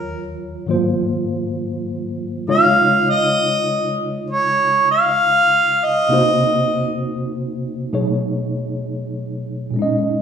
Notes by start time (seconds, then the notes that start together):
Already playing: D#2 D#3 F#3 F4 A#4 C#5
0.66 G#2 D#3 F#3 A#3 F4
0.71 C5
2.48 C#3 G#3 D#4 F4 C#5 F5
3.10 D#5
4.31 C#5
4.91 F5
5.85 D#5
6.09 C3 A#3 D#4 F#4
6.14 C5
7.93 B2 F#3 A3 D#4 G#4 C#5
9.71 A#2 G#3
9.76 C#4 D#4
9.82 D#5